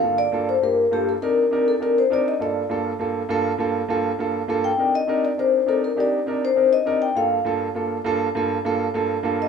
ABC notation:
X:1
M:4/4
L:1/8
Q:1/4=202
K:Gm
V:1 name="Vibraphone"
f d2 c B2 G A | B3 A B c d e | d2 z6 | z6 z g- |
g e2 d c2 A B | d3 c2 e2 g | f2 z6 | z6 z e |]
V:2 name="Grand piano"
[G,,B,FA] z [G,,B,FA] z [G,,B,FG] z [G,,B,FA] z | [C,DEB] z [C,DEB] z [C,DEB] z [C,DEB] z | [G,,B,FA] z [G,,B,FA] z [G,,B,FA] z [G,,B,FA] z | [G,,B,FA] z [G,,B,FA] z [G,,B,FA] z [G,,B,FA] z |
[C,DEB] z [C,DEB] z [C,DEB] z [C,DEB] z | [C,DEG] z [C,DEB] z [C,DEB] z [C,DEB] z | [G,,B,FA] z [G,,B,FA] z [G,,B,FA] z [G,,B,FA] z | [G,,B,FA] z [G,,B,FA] z [G,,B,FA] z [G,,B,FA] z |]